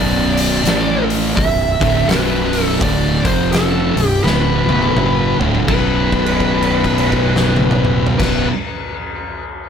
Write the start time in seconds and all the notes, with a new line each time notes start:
Already playing: B0 B1 F#2 B2 D5
0.37 open hi-hat
0.63 A1 A2 E3 A3, open hi-hat
0.67 snare
1.10 open hi-hat
1.36 B0 B1 F#2 E5, kick, open hi-hat
1.80 D1 D2 A2 D3, kick, open hi-hat
2.08 B0 B1 F#2 B2 B4, snare, open hi-hat
2.53 open hi-hat
2.63 A4
2.80 D1 D2 A2 D3 D5, kick, open hi-hat
3.24 F1 F2 C3 F3 C5, kick, open hi-hat
3.53 A4, snare, open hi-hat
3.96 B0 B1 F#2, open hi-hat
4.08 G4
4.23 D1 D2 A2 D3 B4, snare
4.67 B0 B1 F#2 B2, high tom
4.83 high tom
4.95 F#1 F#2 C#3 F#3, mid tom
5.39 D1 D2 A2 D3, floor tom
5.55 floor tom
5.67 B0 B1 F#2 B2 B4, kick, crash
6.12 kick, crash
6.26 crash
6.40 kick, crash
6.62 crash
6.84 kick, crash
6.98 crash
7.12 kick, crash
7.36 snare
7.56 high tom
7.71 mid tom
7.85 mid tom
8.07 floor tom
8.17 B0 B1 F#2 B2 B4, kick, crash
8.22 snare